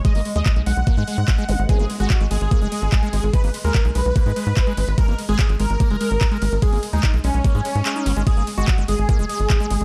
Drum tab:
CC |----------------|----------------|----------------|----------------|
RD |----------------|x-x-x-x-x-x-x-x-|x-x-x-x-x-x-x-x-|x-x-x-x-x-x-x-x-|
HH |xooxxxoxxxoxxxox|xxoxxxoxxxoxxxox|xooxxxoxxxoxxxox|xxoxxxoxxxoxxxox|
CP |----x-------x---|----x-------x---|----x-------x---|----x-------x---|
BD |o---o---o---o---|o---o---o---o---|o---o---o---o---|o---o---o---o---|

CC |----------------|x---------------|
RD |x-x-x-x-x-x-x-x-|x-x-x-x-x-x-x-x-|
HH |xooxxxoxxxoxxxox|xxoxxxoxxxoxxxox|
CP |----x-------x---|----x-------x---|
BD |o---o---o-------|o---o---o---o---|